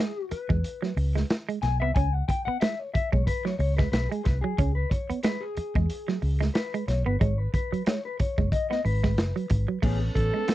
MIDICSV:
0, 0, Header, 1, 9, 480
1, 0, Start_track
1, 0, Key_signature, 4, "minor"
1, 0, Tempo, 655738
1, 1436, Time_signature, 4, 2, 24, 8
1, 7720, End_track
2, 0, Start_track
2, 0, Title_t, "Clean electric guitar"
2, 0, Program_c, 0, 27
2, 0, Note_on_c, 0, 68, 91
2, 228, Note_on_c, 0, 71, 82
2, 242, Note_off_c, 0, 68, 0
2, 923, Note_off_c, 0, 71, 0
2, 1184, Note_on_c, 0, 80, 101
2, 1314, Note_off_c, 0, 80, 0
2, 1317, Note_on_c, 0, 76, 106
2, 1421, Note_off_c, 0, 76, 0
2, 1424, Note_on_c, 0, 80, 103
2, 1558, Note_off_c, 0, 80, 0
2, 1558, Note_on_c, 0, 78, 101
2, 1667, Note_off_c, 0, 78, 0
2, 1670, Note_on_c, 0, 79, 106
2, 1792, Note_off_c, 0, 79, 0
2, 1795, Note_on_c, 0, 78, 103
2, 1901, Note_off_c, 0, 78, 0
2, 1907, Note_on_c, 0, 76, 90
2, 2044, Note_off_c, 0, 76, 0
2, 2044, Note_on_c, 0, 73, 111
2, 2146, Note_off_c, 0, 73, 0
2, 2149, Note_on_c, 0, 76, 89
2, 2278, Note_off_c, 0, 76, 0
2, 2286, Note_on_c, 0, 73, 86
2, 2388, Note_off_c, 0, 73, 0
2, 2391, Note_on_c, 0, 71, 102
2, 2525, Note_off_c, 0, 71, 0
2, 2525, Note_on_c, 0, 73, 96
2, 2618, Note_off_c, 0, 73, 0
2, 2626, Note_on_c, 0, 73, 101
2, 2754, Note_off_c, 0, 73, 0
2, 2757, Note_on_c, 0, 71, 88
2, 2859, Note_off_c, 0, 71, 0
2, 2868, Note_on_c, 0, 71, 97
2, 2994, Note_off_c, 0, 71, 0
2, 2994, Note_on_c, 0, 68, 82
2, 3104, Note_off_c, 0, 68, 0
2, 3104, Note_on_c, 0, 71, 93
2, 3228, Note_off_c, 0, 71, 0
2, 3231, Note_on_c, 0, 68, 88
2, 3474, Note_off_c, 0, 68, 0
2, 3477, Note_on_c, 0, 71, 92
2, 3585, Note_off_c, 0, 71, 0
2, 3585, Note_on_c, 0, 73, 92
2, 3828, Note_off_c, 0, 73, 0
2, 3831, Note_on_c, 0, 71, 94
2, 3957, Note_on_c, 0, 68, 107
2, 3973, Note_off_c, 0, 71, 0
2, 4655, Note_off_c, 0, 68, 0
2, 4786, Note_on_c, 0, 71, 85
2, 5030, Note_off_c, 0, 71, 0
2, 5033, Note_on_c, 0, 73, 87
2, 5161, Note_off_c, 0, 73, 0
2, 5164, Note_on_c, 0, 71, 83
2, 5268, Note_off_c, 0, 71, 0
2, 5270, Note_on_c, 0, 73, 88
2, 5401, Note_off_c, 0, 73, 0
2, 5401, Note_on_c, 0, 71, 90
2, 5507, Note_off_c, 0, 71, 0
2, 5516, Note_on_c, 0, 71, 89
2, 5756, Note_off_c, 0, 71, 0
2, 5759, Note_on_c, 0, 73, 89
2, 5890, Note_off_c, 0, 73, 0
2, 5893, Note_on_c, 0, 71, 97
2, 6000, Note_off_c, 0, 71, 0
2, 6002, Note_on_c, 0, 73, 84
2, 6224, Note_off_c, 0, 73, 0
2, 6237, Note_on_c, 0, 75, 90
2, 6359, Note_off_c, 0, 75, 0
2, 6368, Note_on_c, 0, 75, 98
2, 6475, Note_off_c, 0, 75, 0
2, 6477, Note_on_c, 0, 71, 86
2, 7169, Note_off_c, 0, 71, 0
2, 7192, Note_on_c, 0, 59, 83
2, 7199, Note_on_c, 0, 61, 85
2, 7206, Note_on_c, 0, 68, 87
2, 7317, Note_off_c, 0, 68, 0
2, 7325, Note_off_c, 0, 61, 0
2, 7338, Note_off_c, 0, 59, 0
2, 7565, Note_on_c, 0, 69, 70
2, 7569, Note_on_c, 0, 61, 60
2, 7574, Note_on_c, 0, 59, 56
2, 7658, Note_off_c, 0, 69, 0
2, 7660, Note_off_c, 0, 61, 0
2, 7663, Note_off_c, 0, 59, 0
2, 7720, End_track
3, 0, Start_track
3, 0, Title_t, "Alto saxophone"
3, 0, Program_c, 1, 65
3, 7430, Note_on_c, 1, 69, 110
3, 7720, Note_off_c, 1, 69, 0
3, 7720, End_track
4, 0, Start_track
4, 0, Title_t, "Tonewheel organ"
4, 0, Program_c, 2, 16
4, 7195, Note_on_c, 2, 69, 78
4, 7200, Note_on_c, 2, 61, 59
4, 7204, Note_on_c, 2, 59, 70
4, 7720, Note_off_c, 2, 59, 0
4, 7720, Note_off_c, 2, 61, 0
4, 7720, Note_off_c, 2, 69, 0
4, 7720, End_track
5, 0, Start_track
5, 0, Title_t, "Clean electric guitar"
5, 0, Program_c, 3, 27
5, 0, Note_on_c, 3, 56, 82
5, 77, Note_off_c, 3, 56, 0
5, 360, Note_on_c, 3, 56, 60
5, 429, Note_off_c, 3, 56, 0
5, 603, Note_on_c, 3, 54, 81
5, 672, Note_off_c, 3, 54, 0
5, 845, Note_on_c, 3, 56, 66
5, 913, Note_off_c, 3, 56, 0
5, 1087, Note_on_c, 3, 56, 87
5, 1155, Note_off_c, 3, 56, 0
5, 1330, Note_on_c, 3, 59, 73
5, 1397, Note_off_c, 3, 59, 0
5, 1441, Note_on_c, 3, 61, 83
5, 1524, Note_off_c, 3, 61, 0
5, 1815, Note_on_c, 3, 59, 67
5, 1880, Note_off_c, 3, 59, 0
5, 1919, Note_on_c, 3, 56, 83
5, 2002, Note_off_c, 3, 56, 0
5, 2287, Note_on_c, 3, 56, 74
5, 2355, Note_off_c, 3, 56, 0
5, 2525, Note_on_c, 3, 54, 77
5, 2593, Note_off_c, 3, 54, 0
5, 2770, Note_on_c, 3, 56, 81
5, 2837, Note_off_c, 3, 56, 0
5, 3013, Note_on_c, 3, 56, 78
5, 3078, Note_off_c, 3, 56, 0
5, 3250, Note_on_c, 3, 54, 74
5, 3317, Note_off_c, 3, 54, 0
5, 3359, Note_on_c, 3, 61, 95
5, 3443, Note_off_c, 3, 61, 0
5, 3730, Note_on_c, 3, 59, 68
5, 3797, Note_off_c, 3, 59, 0
5, 3840, Note_on_c, 3, 56, 97
5, 3923, Note_off_c, 3, 56, 0
5, 4216, Note_on_c, 3, 56, 71
5, 4281, Note_off_c, 3, 56, 0
5, 4452, Note_on_c, 3, 54, 86
5, 4518, Note_off_c, 3, 54, 0
5, 4689, Note_on_c, 3, 56, 83
5, 4756, Note_off_c, 3, 56, 0
5, 4935, Note_on_c, 3, 56, 90
5, 5000, Note_off_c, 3, 56, 0
5, 5169, Note_on_c, 3, 59, 80
5, 5236, Note_off_c, 3, 59, 0
5, 5278, Note_on_c, 3, 56, 86
5, 5362, Note_off_c, 3, 56, 0
5, 5654, Note_on_c, 3, 54, 65
5, 5720, Note_off_c, 3, 54, 0
5, 5760, Note_on_c, 3, 56, 74
5, 5844, Note_off_c, 3, 56, 0
5, 6134, Note_on_c, 3, 56, 73
5, 6200, Note_off_c, 3, 56, 0
5, 6373, Note_on_c, 3, 59, 71
5, 6439, Note_off_c, 3, 59, 0
5, 6614, Note_on_c, 3, 56, 79
5, 6680, Note_off_c, 3, 56, 0
5, 6851, Note_on_c, 3, 54, 72
5, 6917, Note_off_c, 3, 54, 0
5, 7088, Note_on_c, 3, 54, 78
5, 7156, Note_off_c, 3, 54, 0
5, 7191, Note_on_c, 3, 57, 76
5, 7278, Note_off_c, 3, 57, 0
5, 7566, Note_on_c, 3, 56, 68
5, 7634, Note_off_c, 3, 56, 0
5, 7674, Note_on_c, 3, 59, 78
5, 7720, Note_off_c, 3, 59, 0
5, 7720, End_track
6, 0, Start_track
6, 0, Title_t, "Fingered electric bass"
6, 0, Program_c, 4, 33
6, 366, Note_on_c, 4, 40, 76
6, 449, Note_off_c, 4, 40, 0
6, 707, Note_on_c, 4, 37, 96
6, 896, Note_off_c, 4, 37, 0
6, 1191, Note_on_c, 4, 35, 108
6, 1334, Note_off_c, 4, 35, 0
6, 1334, Note_on_c, 4, 36, 103
6, 1415, Note_off_c, 4, 36, 0
6, 1434, Note_on_c, 4, 37, 100
6, 1621, Note_off_c, 4, 37, 0
6, 2292, Note_on_c, 4, 35, 89
6, 2374, Note_off_c, 4, 35, 0
6, 2629, Note_on_c, 4, 37, 105
6, 2818, Note_off_c, 4, 37, 0
6, 2870, Note_on_c, 4, 35, 90
6, 2977, Note_off_c, 4, 35, 0
6, 3120, Note_on_c, 4, 36, 92
6, 3223, Note_off_c, 4, 36, 0
6, 3354, Note_on_c, 4, 37, 114
6, 3541, Note_off_c, 4, 37, 0
6, 4214, Note_on_c, 4, 40, 91
6, 4295, Note_off_c, 4, 40, 0
6, 4557, Note_on_c, 4, 37, 97
6, 4743, Note_off_c, 4, 37, 0
6, 5036, Note_on_c, 4, 35, 97
6, 5141, Note_off_c, 4, 35, 0
6, 5169, Note_on_c, 4, 31, 90
6, 5252, Note_off_c, 4, 31, 0
6, 5278, Note_on_c, 4, 32, 113
6, 5463, Note_off_c, 4, 32, 0
6, 6136, Note_on_c, 4, 30, 76
6, 6216, Note_off_c, 4, 30, 0
6, 6480, Note_on_c, 4, 32, 103
6, 6715, Note_off_c, 4, 32, 0
6, 6715, Note_on_c, 4, 30, 88
6, 6821, Note_off_c, 4, 30, 0
6, 6961, Note_on_c, 4, 32, 97
6, 7064, Note_off_c, 4, 32, 0
6, 7193, Note_on_c, 4, 33, 100
6, 7381, Note_off_c, 4, 33, 0
6, 7433, Note_on_c, 4, 33, 100
6, 7539, Note_off_c, 4, 33, 0
6, 7720, End_track
7, 0, Start_track
7, 0, Title_t, "Muted clean electric guitar strokes"
7, 231, Note_on_c, 9, 29, 44
7, 304, Note_off_c, 9, 29, 0
7, 713, Note_on_c, 9, 29, 46
7, 786, Note_off_c, 9, 29, 0
7, 1195, Note_on_c, 9, 29, 44
7, 1268, Note_off_c, 9, 29, 0
7, 1685, Note_on_c, 9, 29, 44
7, 1758, Note_off_c, 9, 29, 0
7, 2154, Note_on_c, 9, 29, 46
7, 2228, Note_off_c, 9, 29, 0
7, 2637, Note_on_c, 9, 29, 46
7, 2710, Note_off_c, 9, 29, 0
7, 3112, Note_on_c, 9, 29, 47
7, 3185, Note_off_c, 9, 29, 0
7, 3599, Note_on_c, 9, 29, 37
7, 3672, Note_off_c, 9, 29, 0
7, 4081, Note_on_c, 9, 29, 45
7, 4154, Note_off_c, 9, 29, 0
7, 4554, Note_on_c, 9, 29, 48
7, 4627, Note_off_c, 9, 29, 0
7, 5038, Note_on_c, 9, 29, 43
7, 5111, Note_off_c, 9, 29, 0
7, 5521, Note_on_c, 9, 29, 41
7, 5595, Note_off_c, 9, 29, 0
7, 6001, Note_on_c, 9, 29, 48
7, 6074, Note_off_c, 9, 29, 0
7, 6476, Note_on_c, 9, 29, 47
7, 6549, Note_off_c, 9, 29, 0
7, 6954, Note_on_c, 9, 29, 52
7, 7028, Note_off_c, 9, 29, 0
7, 7326, Note_on_c, 9, 29, 49
7, 7399, Note_off_c, 9, 29, 0
7, 7431, Note_on_c, 9, 29, 40
7, 7504, Note_off_c, 9, 29, 0
7, 7720, End_track
8, 0, Start_track
8, 0, Title_t, "Muted fingered electric bass strokes"
8, 232, Note_on_c, 9, 29, 50
8, 306, Note_off_c, 9, 29, 0
8, 1808, Note_on_c, 9, 29, 50
8, 1881, Note_off_c, 9, 29, 0
8, 2161, Note_on_c, 9, 29, 50
8, 2234, Note_off_c, 9, 29, 0
8, 3733, Note_on_c, 9, 29, 52
8, 3806, Note_off_c, 9, 29, 0
8, 4080, Note_on_c, 9, 29, 51
8, 4153, Note_off_c, 9, 29, 0
8, 5653, Note_on_c, 9, 29, 48
8, 5726, Note_off_c, 9, 29, 0
8, 6004, Note_on_c, 9, 29, 47
8, 6077, Note_off_c, 9, 29, 0
8, 7720, End_track
9, 0, Start_track
9, 0, Title_t, "Drums"
9, 229, Note_on_c, 9, 42, 81
9, 302, Note_off_c, 9, 42, 0
9, 366, Note_on_c, 9, 36, 101
9, 440, Note_off_c, 9, 36, 0
9, 471, Note_on_c, 9, 42, 91
9, 544, Note_off_c, 9, 42, 0
9, 608, Note_on_c, 9, 38, 35
9, 681, Note_off_c, 9, 38, 0
9, 712, Note_on_c, 9, 46, 68
9, 785, Note_off_c, 9, 46, 0
9, 852, Note_on_c, 9, 38, 40
9, 925, Note_off_c, 9, 38, 0
9, 953, Note_on_c, 9, 42, 80
9, 956, Note_on_c, 9, 38, 107
9, 1026, Note_off_c, 9, 42, 0
9, 1029, Note_off_c, 9, 38, 0
9, 1096, Note_on_c, 9, 42, 52
9, 1169, Note_off_c, 9, 42, 0
9, 1190, Note_on_c, 9, 42, 79
9, 1194, Note_on_c, 9, 38, 38
9, 1263, Note_off_c, 9, 42, 0
9, 1267, Note_off_c, 9, 38, 0
9, 1433, Note_on_c, 9, 36, 120
9, 1433, Note_on_c, 9, 42, 74
9, 1506, Note_off_c, 9, 36, 0
9, 1506, Note_off_c, 9, 42, 0
9, 1674, Note_on_c, 9, 36, 89
9, 1679, Note_on_c, 9, 42, 84
9, 1747, Note_off_c, 9, 36, 0
9, 1752, Note_off_c, 9, 42, 0
9, 1912, Note_on_c, 9, 42, 90
9, 1921, Note_on_c, 9, 38, 118
9, 1986, Note_off_c, 9, 42, 0
9, 1994, Note_off_c, 9, 38, 0
9, 2158, Note_on_c, 9, 42, 76
9, 2160, Note_on_c, 9, 36, 89
9, 2232, Note_off_c, 9, 42, 0
9, 2234, Note_off_c, 9, 36, 0
9, 2291, Note_on_c, 9, 36, 89
9, 2364, Note_off_c, 9, 36, 0
9, 2395, Note_on_c, 9, 36, 99
9, 2397, Note_on_c, 9, 42, 89
9, 2468, Note_off_c, 9, 36, 0
9, 2471, Note_off_c, 9, 42, 0
9, 2530, Note_on_c, 9, 38, 37
9, 2604, Note_off_c, 9, 38, 0
9, 2633, Note_on_c, 9, 46, 64
9, 2706, Note_off_c, 9, 46, 0
9, 2770, Note_on_c, 9, 38, 38
9, 2776, Note_on_c, 9, 36, 91
9, 2843, Note_off_c, 9, 38, 0
9, 2849, Note_off_c, 9, 36, 0
9, 2877, Note_on_c, 9, 42, 90
9, 2880, Note_on_c, 9, 38, 102
9, 2951, Note_off_c, 9, 42, 0
9, 2953, Note_off_c, 9, 38, 0
9, 3016, Note_on_c, 9, 42, 52
9, 3090, Note_off_c, 9, 42, 0
9, 3114, Note_on_c, 9, 42, 85
9, 3118, Note_on_c, 9, 38, 40
9, 3120, Note_on_c, 9, 36, 94
9, 3187, Note_off_c, 9, 42, 0
9, 3191, Note_off_c, 9, 38, 0
9, 3193, Note_off_c, 9, 36, 0
9, 3355, Note_on_c, 9, 42, 75
9, 3356, Note_on_c, 9, 36, 120
9, 3429, Note_off_c, 9, 36, 0
9, 3429, Note_off_c, 9, 42, 0
9, 3596, Note_on_c, 9, 36, 94
9, 3599, Note_on_c, 9, 42, 84
9, 3669, Note_off_c, 9, 36, 0
9, 3672, Note_off_c, 9, 42, 0
9, 3736, Note_on_c, 9, 42, 54
9, 3809, Note_off_c, 9, 42, 0
9, 3831, Note_on_c, 9, 42, 98
9, 3839, Note_on_c, 9, 38, 106
9, 3904, Note_off_c, 9, 42, 0
9, 3912, Note_off_c, 9, 38, 0
9, 4075, Note_on_c, 9, 42, 76
9, 4148, Note_off_c, 9, 42, 0
9, 4212, Note_on_c, 9, 36, 93
9, 4285, Note_off_c, 9, 36, 0
9, 4316, Note_on_c, 9, 42, 93
9, 4390, Note_off_c, 9, 42, 0
9, 4451, Note_on_c, 9, 38, 37
9, 4525, Note_off_c, 9, 38, 0
9, 4555, Note_on_c, 9, 46, 73
9, 4628, Note_off_c, 9, 46, 0
9, 4695, Note_on_c, 9, 38, 39
9, 4768, Note_off_c, 9, 38, 0
9, 4795, Note_on_c, 9, 42, 78
9, 4797, Note_on_c, 9, 38, 102
9, 4868, Note_off_c, 9, 42, 0
9, 4871, Note_off_c, 9, 38, 0
9, 4939, Note_on_c, 9, 42, 52
9, 5012, Note_off_c, 9, 42, 0
9, 5038, Note_on_c, 9, 42, 80
9, 5042, Note_on_c, 9, 38, 35
9, 5111, Note_off_c, 9, 42, 0
9, 5115, Note_off_c, 9, 38, 0
9, 5278, Note_on_c, 9, 36, 120
9, 5279, Note_on_c, 9, 42, 73
9, 5351, Note_off_c, 9, 36, 0
9, 5352, Note_off_c, 9, 42, 0
9, 5518, Note_on_c, 9, 36, 95
9, 5523, Note_on_c, 9, 42, 76
9, 5591, Note_off_c, 9, 36, 0
9, 5597, Note_off_c, 9, 42, 0
9, 5663, Note_on_c, 9, 42, 45
9, 5736, Note_off_c, 9, 42, 0
9, 5756, Note_on_c, 9, 42, 101
9, 5764, Note_on_c, 9, 38, 112
9, 5829, Note_off_c, 9, 42, 0
9, 5837, Note_off_c, 9, 38, 0
9, 5999, Note_on_c, 9, 42, 83
9, 6003, Note_on_c, 9, 36, 92
9, 6072, Note_off_c, 9, 42, 0
9, 6076, Note_off_c, 9, 36, 0
9, 6134, Note_on_c, 9, 36, 106
9, 6207, Note_off_c, 9, 36, 0
9, 6237, Note_on_c, 9, 36, 101
9, 6242, Note_on_c, 9, 42, 83
9, 6310, Note_off_c, 9, 36, 0
9, 6315, Note_off_c, 9, 42, 0
9, 6378, Note_on_c, 9, 38, 37
9, 6451, Note_off_c, 9, 38, 0
9, 6482, Note_on_c, 9, 46, 67
9, 6555, Note_off_c, 9, 46, 0
9, 6615, Note_on_c, 9, 38, 41
9, 6618, Note_on_c, 9, 36, 98
9, 6688, Note_off_c, 9, 38, 0
9, 6691, Note_off_c, 9, 36, 0
9, 6719, Note_on_c, 9, 42, 83
9, 6721, Note_on_c, 9, 38, 115
9, 6792, Note_off_c, 9, 42, 0
9, 6794, Note_off_c, 9, 38, 0
9, 6860, Note_on_c, 9, 42, 50
9, 6933, Note_off_c, 9, 42, 0
9, 6952, Note_on_c, 9, 42, 91
9, 6959, Note_on_c, 9, 36, 97
9, 7025, Note_off_c, 9, 42, 0
9, 7033, Note_off_c, 9, 36, 0
9, 7195, Note_on_c, 9, 36, 127
9, 7197, Note_on_c, 9, 49, 96
9, 7268, Note_off_c, 9, 36, 0
9, 7270, Note_off_c, 9, 49, 0
9, 7435, Note_on_c, 9, 36, 84
9, 7440, Note_on_c, 9, 42, 82
9, 7508, Note_off_c, 9, 36, 0
9, 7513, Note_off_c, 9, 42, 0
9, 7671, Note_on_c, 9, 42, 101
9, 7679, Note_on_c, 9, 38, 122
9, 7720, Note_off_c, 9, 38, 0
9, 7720, Note_off_c, 9, 42, 0
9, 7720, End_track
0, 0, End_of_file